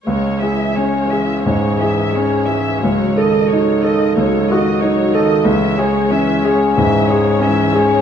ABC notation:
X:1
M:4/4
L:1/8
Q:1/4=91
K:C#m
V:1 name="Grand piano"
C,, G C G G,, G C G | C,, A D A C,, F D A | C,, G C G G,, G C G |]
V:2 name="Viola section"
[G,c] [E,e] [G,c] [E,e] [G,c] [E,e] [G,c] [E,e] | [F,c] [D,d] [F,c] [D,d] [F,c] [D,d] [F,c] [D,d] | [E,e] [G,c] [E,e] [G,c] [E,e] [G,c] [E,e] [G,c] |]